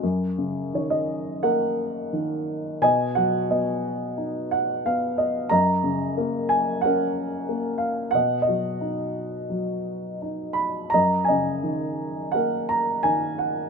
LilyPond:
<<
  \new Staff \with { instrumentName = "Upright piano" } { \time 4/4 \key fis \major \tempo 4 = 87 << { r4 cis''16 dis''8. fis''2 | gis''8 fis''8 dis''4 r8 fis''8 eis''8 dis''8 | ais''4. gis''8 fis''4. eis''8 | fis''8 dis''2. b''8 |
ais''8 gis''4. fis''8 ais''8 gis''8 fis''8 | } \\ { r2 ais'2 | dis''2 r2 | dis''2 ais'2 | dis''8 fis'2. r8 |
dis''8 dis''4. ais'2 | } >> }
  \new Staff \with { instrumentName = "Upright piano" } { \clef bass \time 4/4 \key fis \major fis,8 cis8 dis4 ais4 dis4 | b,8 fis8 b4 dis'4 b4 | fis,8 cis8 ais4 cis'4 ais4 | b,8 fis8 dis'4 fis4 dis'4 |
fis,8 cis8 dis4 ais4 dis4 | }
>>